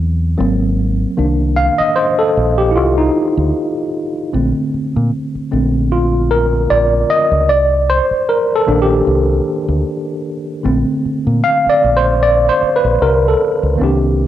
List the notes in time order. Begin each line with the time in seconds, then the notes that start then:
Already playing: E2 C5
0.38 G#1 F#3 A#3 C4
1.17 C2 D#3 A#3 D4
1.56 F5
1.78 D#5, muted fingered electric bass stroke
1.96 C5
2.19 A4
2.37 A#1
2.58 G4
2.71 E4
2.76 C2 F4
2.98 D#4
3.37 D2
4.33 A#1 D3 A3 C4
4.74 muted fingered electric bass stroke
4.96 A#2
5.35 muted fingered electric bass stroke
5.51 A#1 D3 A3 C4
5.92 F4
6.31 A#4
6.70 A#1 D5
7.10 D#5
7.31 C#2
7.49 C2 D5
7.90 C5
8.11 muted fingered electric bass stroke
8.29 A#4
8.56 A4
8.67 A#1 D#3 A#3 D4
8.82 G4
9.07 C2
9.68 D2
10.63 A#1 D3 A3 C4
11.05 muted fingered electric bass stroke
11.27 A#2
11.44 F5
11.66 D5, muted fingered electric bass stroke
11.84 A#1
11.97 C5
12.23 D5
12.49 C5
12.62 muted fingered electric bass stroke
12.76 B4
12.84 A#1
13.02 C2 A#4
13.28 A4
13.63 C#2
13.76 D#3 A#3 C4
13.81 C2 D4 G4